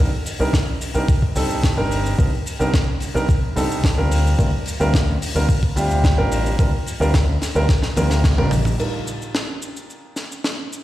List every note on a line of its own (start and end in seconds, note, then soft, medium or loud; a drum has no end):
0.26 open hi-hat loud
0.26 cabasa medium
0.39 0.76 C2 medium
0.39 0.49 G3 medium
0.39 0.49 C4 medium
0.39 0.50 D4 medium
0.39 0.50 D#4 medium
0.39 0.50 A#4 medium
0.39 cabasa medium
0.53 kick loud
0.53 snare loud
0.53 cabasa soft
0.81 muted picked electric bass stroke soft
0.81 open hi-hat loud
0.81 cabasa medium
0.94 1.05 C2 medium
0.94 1.04 G3 medium
0.94 1.04 C4 medium
0.94 1.04 D4 medium
0.94 1.05 D#4 medium
0.94 1.05 A#4 medium
0.94 cabasa medium
1.08 kick loud
1.08 cabasa medium
1.22 kick medium
1.36 1.77 C2 medium
1.36 1.74 G3 medium
1.36 1.74 C4 medium
1.36 1.74 D4 medium
1.36 1.74 D#4 medium
1.36 1.74 A4 loud
1.36 open hi-hat loud
1.36 cabasa medium
1.50 cabasa medium
1.64 kick loud
1.64 snare loud
1.64 cabasa soft
1.77 2.13 G1 medium
1.77 2.15 G3 medium
1.77 2.15 C4 medium
1.77 2.15 D4 medium
1.77 2.15 D#4 medium
1.77 2.16 A#4 medium
1.91 open hi-hat loud
1.91 cabasa medium
2.06 cabasa medium
2.18 2.29 C2 medium
2.18 2.28 G3 medium
2.18 2.28 C4 medium
2.18 2.29 D4 medium
2.18 2.29 D#4 medium
2.18 2.29 A#4 medium
2.18 kick loud
2.18 cabasa soft
2.46 open hi-hat medium
2.46 cabasa medium
2.59 2.96 C2 medium
2.59 2.69 G3 medium
2.59 2.70 C4 medium
2.59 2.70 D4 medium
2.59 2.70 D#4 medium
2.59 2.70 A#4 loud
2.59 cabasa medium
2.74 kick loud
2.74 snare loud
2.74 cabasa medium
3.00 muted picked electric bass stroke soft
3.00 open hi-hat medium
3.00 cabasa medium
3.14 3.25 C2 loud
3.14 3.24 G3 medium
3.14 3.25 C4 medium
3.14 3.25 D4 medium
3.14 3.25 D#4 medium
3.14 3.25 A#4 medium
3.14 cabasa medium
3.29 kick loud
3.29 cabasa soft
3.42 muted picked electric bass stroke soft
3.56 3.97 C2 medium
3.56 3.94 G3 medium
3.56 3.94 C4 medium
3.56 3.94 D4 medium
3.56 3.94 D#4 medium
3.56 3.95 A4 loud
3.56 open hi-hat loud
3.56 cabasa medium
3.71 cabasa medium
3.84 kick loud
3.84 snare loud
3.84 cabasa soft
3.97 4.34 D2 medium
3.97 4.35 G3 medium
3.97 4.35 C4 medium
3.97 4.35 D4 medium
3.97 4.36 F4 medium
3.97 4.36 A#4 loud
4.11 open hi-hat loud
4.11 cabasa medium
4.27 cabasa medium
4.38 4.49 D2 loud
4.38 4.49 G3 medium
4.38 4.49 C4 medium
4.38 4.49 D4 medium
4.38 4.49 F4 medium
4.38 4.49 A#4 medium
4.38 kick loud
4.38 cabasa soft
4.66 open hi-hat loud
4.66 cabasa medium
4.80 5.16 D2 medium
4.80 4.90 G3 medium
4.80 4.90 C4 medium
4.80 4.90 D4 medium
4.80 4.90 F4 medium
4.80 4.90 A#4 loud
4.80 cabasa medium
4.94 kick loud
4.94 snare loud
4.94 cabasa soft
5.21 muted picked electric bass stroke soft
5.21 open hi-hat loud
5.21 cabasa medium
5.35 5.46 D2 loud
5.35 5.45 G3 medium
5.35 5.45 C4 medium
5.35 5.45 D4 medium
5.35 5.45 F4 medium
5.35 5.45 A#4 medium
5.35 cabasa medium
5.49 kick loud
5.49 cabasa soft
5.63 kick medium
5.76 6.19 D2 medium
5.76 6.14 G3 medium
5.76 6.14 C4 medium
5.76 6.14 D4 medium
5.76 6.15 F4 medium
5.76 6.15 G4 loud
5.76 open hi-hat loud
5.76 cabasa medium
5.91 cabasa medium
6.04 kick loud
6.04 snare loud
6.04 cabasa soft
6.17 6.54 A1 medium
6.17 6.55 G3 medium
6.17 6.56 C4 medium
6.17 6.56 D4 medium
6.17 6.56 F4 medium
6.17 6.56 A#4 loud
6.31 open hi-hat loud
6.31 cabasa medium
6.46 cabasa medium
6.59 6.70 D2 loud
6.59 6.69 G3 medium
6.59 6.69 C4 medium
6.59 6.69 D4 medium
6.59 6.69 F4 medium
6.59 6.69 A#4 medium
6.59 kick loud
6.59 cabasa soft
6.86 open hi-hat medium
6.86 cabasa medium
7.00 7.36 D2 medium
7.00 7.10 G3 medium
7.00 7.10 C4 medium
7.00 7.10 D4 medium
7.00 7.10 F4 medium
7.00 7.10 A#4 loud
7.00 cabasa medium
7.14 kick loud
7.14 snare loud
7.14 cabasa soft
7.41 muted picked electric bass stroke soft
7.41 snare medium
7.41 open hi-hat loud
7.41 cabasa medium
7.55 7.66 D2 medium
7.55 7.65 G3 medium
7.55 7.65 C4 medium
7.55 7.65 D4 medium
7.55 7.65 F4 medium
7.55 7.65 A#4 medium
7.55 cabasa medium
7.69 kick loud
7.69 snare medium
7.69 cabasa soft
7.83 muted picked electric bass stroke soft
7.83 snare medium
7.96 8.39 D2 medium
7.96 8.34 G3 medium
7.96 8.35 C4 medium
7.96 8.35 D4 medium
7.96 8.35 F4 medium
7.96 8.35 A#4 medium
7.96 open hi-hat medium
7.96 high tom medium
7.96 cabasa medium
8.10 snare medium
8.10 cabasa medium
8.24 kick loud
8.24 snare medium
8.24 cabasa medium
8.37 8.74 A1 medium
8.37 8.47 G3 medium
8.37 8.48 C4 medium
8.37 8.48 D4 medium
8.37 8.48 F4 medium
8.37 8.48 A#4 loud
8.37 mid tom medium
8.51 mid tom medium
8.51 open hi-hat loud
8.51 cabasa medium
8.65 mid tom medium
8.65 cabasa medium
8.78 10.84 G3 medium
8.78 10.84 D4 medium
8.78 10.84 D#4 medium
8.78 10.84 F4 medium
8.78 10.84 A#4 medium
8.78 crash medium
8.78 cabasa soft
9.07 cabasa medium
9.22 cabasa medium
9.35 snare loud
9.35 cabasa soft
9.62 cabasa medium
9.76 cabasa medium
9.90 cabasa soft
10.16 snare medium
10.16 cabasa medium
10.32 cabasa medium
10.44 snare loud
10.44 cabasa soft
10.72 cabasa medium